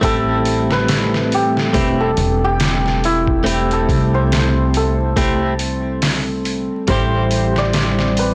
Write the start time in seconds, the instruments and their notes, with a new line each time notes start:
Already playing: ambient pad G3 C4, santur E4
0.01 upright bass A1, clean electric guitar A3 C4 E4 G4, ambient pad A3, santur A4, kick, open hi-hat
0.45 open hi-hat
0.71 santur B4, snare
0.88 snare, open hi-hat
1.14 snare
1.32 santur G4, open hi-hat
1.57 snare
1.73 upright bass E1, clean electric guitar A3 C4 E4 G4, kick, open hi-hat
2.00 santur A4
2.17 upright bass E1, open hi-hat
2.44 santur G4
2.60 snare, open hi-hat
2.86 snare
3.04 santur E4, open hi-hat
3.27 kick
3.44 clean electric guitar A3 C4 E4 G4, open hi-hat
3.71 santur A4, closed hi-hat
3.89 upright bass C2, kick, open hi-hat
4.14 santur C5
4.32 snare, open hi-hat
4.74 santur A4, open hi-hat
5.16 clean electric guitar A3 C4 E4 G4, kick, open hi-hat
5.59 open hi-hat
6.02 snare, open hi-hat
6.45 open hi-hat
6.88 upright bass A1, ambient pad E3 G3 C4, clean electric guitar G3 C4 E4 G4, santur C5, kick, open hi-hat
7.31 open hi-hat
7.56 santur D5, snare
7.73 snare, open hi-hat
7.99 snare
8.17 santur B4, open hi-hat